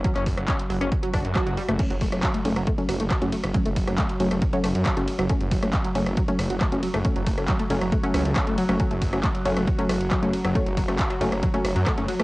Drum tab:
CC |----------------|x---------------|----------------|----------------|
RD |----------------|x-x-x-x-x-x-x-x-|x-x-x-x-x-x-x-x-|x-x-x-x-x-x-x-x-|
HH |xxoxxxoxxxoxxxox|xxoxxxoxxxoxxxox|xxoxxxoxxxoxxxox|xxoxxxoxxxoxxxox|
CP |-x--x-------x---|----x-------x---|----x-------x---|----x-------x---|
SD |---r---r--r-r--r|---r---r--r-r--r|---r---r--r-r--r|---r---r--r-r--r|
BD |o-o-o---o-o-o---|o-o-o---o---o---|o-o-o---o---o---|o-o-o---o---o---|

CC |----------------|----------------|----------------|
RD |x-x-x-x-x-x-x-x-|x-x-x-x-x-x-x-x-|x-x-x-x-x-x-x-x-|
HH |xxoxxxoxxxoxxxox|xxoxxxoxxxoxxxox|xxoxxxoxxxoxxxox|
CP |----x-------x---|----x-------x---|----x-------x---|
SD |---r---r--r-r--r|---r---r--r-r--r|---r---r--r-r--r|
BD |o-o-o---o---o---|o-o-o---o---o---|o-o-o---o---o---|